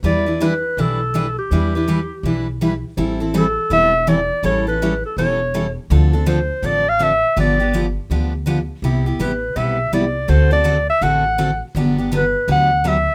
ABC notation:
X:1
M:4/4
L:1/16
Q:"Swing" 1/4=164
K:Em
V:1 name="Clarinet"
d4 B4 A6 G2- | G12 z4 | [K:Am] z4 A4 e4 d4 | ^c2 B4 A2 c6 z2 |
z4 c4 d2 f2 e4 | d6 z8 z2 | z4 B4 e4 d4 | c2 d4 e2 ^f6 z2 |
z4 B4 ^f4 e4 |]
V:2 name="Steel-string acoustic guitar"
[E,G,DEB]2 [DEB]2 [E,G,DEB] z3 [E,G,DEB]2 z2 [E,G,DEB] z3 | [E,G,DEB]2 [DEB]2 [E,G,DEB] z3 [E,G,DEB]2 z2 [E,G,DEB] z3 | [K:Am] [E,G,CEA]2 [CEA]2 [E,G,CEA] z3 [E,G,CEA]2 z2 [E,G,CEA] z3 | [E,G,^CEA]2 [CEA]2 [E,G,CEA] z3 [E,G,CEA]2 z2 [E,G,CEA] z3 |
[D,F,CDA]2 [CDA]2 [D,F,CDA] z3 [D,F,CDA]2 z2 [D,F,CDA] z3 | [D,F,B,DG]2 [B,DG]2 [D,F,B,DG] z3 [D,F,B,DG]2 z2 [D,F,B,DG] z3 | [C,G,B,EG]2 [B,EG]2 [C,G,B,EG] z3 [C,G,B,EG]2 z2 [C,G,B,EG] z3 | [D,A,C^FA]2 [CFA]2 [D,A,CFA] z3 [D,A,CFA]2 z2 [D,A,CFA] z3 |
[D,^F,B,DG]2 [B,DG]2 [D,F,B,DG] z3 [D,F,B,DG]2 z2 [D,F,B,DG] z3 |]
V:3 name="Upright bass" clef=bass
E,,8 B,,,8 | E,,8 B,,,8 | [K:Am] A,,,8 E,,,8 | A,,,8 E,,,8 |
D,,8 A,,,8 | G,,,8 D,,8 | C,,4 A,,,4 B,,,4 C,,4 | D,,8 A,,,8 |
G,,,8 D,,8 |]